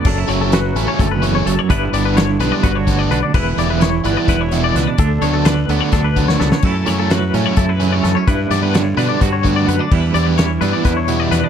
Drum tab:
CC |x-------------|--------------|x-------------|--------------|
HH |--x-x-x-x-x-x-|x-x-x-x-x-x-x-|--x-x-x-x-x-x-|x-x-x-x-x-x---|
SD |----o---------|----o-o---o---|--o-o---o-o-o-|----o---o--ooo|
BD |o-------o-----|o-------o-o---|o-------o-----|o-------o-o---|

CC |x-------------|--------------|x-------------|
HH |--x-x-x-x-x-x-|x-x-x-x-x-x-x-|--x-x-x-x-x-x-|
SD |--o-o-o-----o-|--o-o-o-------|----o---o---o-|
BD |o-------o-----|o-------o-o---|o-------o-----|